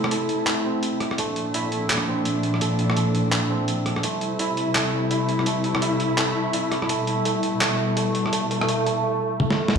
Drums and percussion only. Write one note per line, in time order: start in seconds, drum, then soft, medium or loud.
0.04 cross-stick medium
0.11 closed hi-hat medium
0.29 closed hi-hat soft
0.47 clap loud
0.47 closed hi-hat medium
0.83 closed hi-hat medium
1.00 cross-stick soft
1.00 closed hi-hat soft
1.11 cross-stick soft
1.18 kick loud
1.18 closed hi-hat medium
1.36 closed hi-hat soft
1.54 closed hi-hat medium
1.72 closed hi-hat soft
1.90 cross-stick soft
1.90 clap loud
1.90 closed hi-hat medium
1.93 cross-stick soft
1.95 cross-stick soft
1.98 cross-stick soft
2.25 closed hi-hat medium
2.43 closed hi-hat soft
2.54 cross-stick soft
2.61 kick loud
2.61 closed hi-hat medium
2.79 closed hi-hat soft
2.90 cross-stick medium
2.97 closed hi-hat medium
3.15 closed hi-hat soft
3.32 clap loud
3.32 closed hi-hat medium
3.68 closed hi-hat medium
3.86 cross-stick soft
3.86 closed hi-hat soft
3.96 cross-stick soft
4.03 kick loud
4.03 closed hi-hat medium
4.21 closed hi-hat soft
4.39 closed hi-hat medium
4.57 closed hi-hat soft
4.75 cross-stick soft
4.75 clap loud
4.75 closed hi-hat medium
5.11 closed hi-hat medium
5.29 closed hi-hat soft
5.39 cross-stick soft
5.46 kick loud
5.46 closed hi-hat medium
5.64 closed hi-hat soft
5.75 cross-stick medium
5.82 closed hi-hat medium
6.00 closed hi-hat soft
6.18 clap loud
6.18 closed hi-hat medium
6.53 closed hi-hat medium
6.72 cross-stick soft
6.72 closed hi-hat soft
6.82 cross-stick soft
6.89 kick loud
6.89 closed hi-hat medium
7.07 closed hi-hat soft
7.25 closed hi-hat medium
7.43 closed hi-hat soft
7.61 cross-stick medium
7.61 clap loud
7.61 closed hi-hat medium
7.97 closed hi-hat medium
8.15 closed hi-hat soft
8.26 cross-stick soft
8.33 kick loud
8.33 closed hi-hat medium
8.51 closed hi-hat soft
8.61 cross-stick medium
8.69 closed hi-hat medium
8.86 closed hi-hat soft
9.40 high tom medium
9.51 snare medium
9.68 snare medium